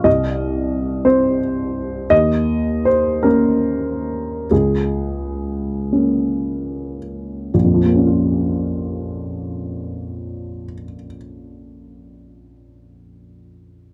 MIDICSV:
0, 0, Header, 1, 2, 480
1, 0, Start_track
1, 0, Key_signature, -5, "minor"
1, 0, Tempo, 676437
1, 41, Time_signature, 6, 3, 24, 8
1, 1001, Tempo, 723764
1, 1961, Tempo, 823045
1, 2921, Tempo, 918836
1, 3401, Tempo, 1010101
1, 3881, Tempo, 1079137
1, 7218, End_track
2, 0, Start_track
2, 0, Title_t, "Upright piano"
2, 0, Program_c, 0, 0
2, 0, Control_c, 0, 64, 127
2, 29, Note_on_c, 0, 75, 66
2, 30, Note_on_c, 0, 36, 37
2, 55, Control_c, 0, 64, 0
2, 154, Control_c, 0, 64, 127
2, 742, Note_on_c, 0, 60, 36
2, 745, Note_on_c, 0, 72, 62
2, 756, Note_off_c, 0, 75, 0
2, 993, Note_off_c, 0, 72, 0
2, 1430, Note_off_c, 0, 60, 0
2, 1434, Note_off_c, 0, 36, 0
2, 1459, Note_on_c, 0, 75, 81
2, 1461, Note_on_c, 0, 39, 46
2, 1477, Control_c, 0, 64, 0
2, 1590, Control_c, 0, 64, 127
2, 1958, Note_off_c, 0, 75, 0
2, 1958, Note_on_c, 0, 72, 62
2, 2176, Note_on_c, 0, 70, 59
2, 2184, Note_on_c, 0, 61, 36
2, 2187, Note_off_c, 0, 72, 0
2, 2187, Note_on_c, 0, 58, 33
2, 2895, Note_off_c, 0, 61, 0
2, 2896, Note_off_c, 0, 39, 0
2, 2897, Note_off_c, 0, 58, 0
2, 2915, Note_off_c, 0, 70, 0
2, 2924, Note_on_c, 0, 68, 47
2, 2927, Note_on_c, 0, 37, 36
2, 2933, Control_c, 0, 64, 0
2, 3039, Control_c, 0, 64, 127
2, 3637, Note_on_c, 0, 58, 22
2, 3640, Note_on_c, 0, 61, 27
2, 4126, Note_off_c, 0, 68, 0
2, 4353, Note_off_c, 0, 58, 0
2, 4354, Note_off_c, 0, 37, 0
2, 4354, Note_off_c, 0, 61, 0
2, 4373, Note_on_c, 0, 34, 36
2, 4381, Control_c, 0, 64, 0
2, 4419, Note_on_c, 0, 41, 29
2, 4463, Note_on_c, 0, 53, 30
2, 4488, Control_c, 0, 64, 127
2, 4511, Note_on_c, 0, 58, 27
2, 4558, Note_on_c, 0, 61, 30
2, 4606, Note_on_c, 0, 65, 30
2, 5750, Note_off_c, 0, 34, 0
2, 5796, Note_off_c, 0, 41, 0
2, 5840, Note_off_c, 0, 53, 0
2, 5887, Note_off_c, 0, 58, 0
2, 5935, Note_off_c, 0, 61, 0
2, 5983, Note_off_c, 0, 65, 0
2, 7218, End_track
0, 0, End_of_file